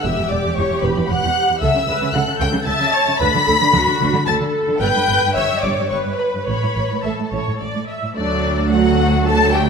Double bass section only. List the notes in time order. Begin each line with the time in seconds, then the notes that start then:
0.04 E1
0.31 E1
0.57 E1
0.83 E1
1.09 E1
1.62 C#2
1.88 C#2
2.14 C#2
2.40 C#2
2.67 C#2
3.21 D2
3.48 D2
3.75 D2
4.02 D2
4.28 D2
4.81 G1
5.09 G1
5.36 G1
5.63 G1
5.92 G1
6.47 A1
6.76 A1
7.04 A1
7.32 A1
7.61 A1
8.17 D2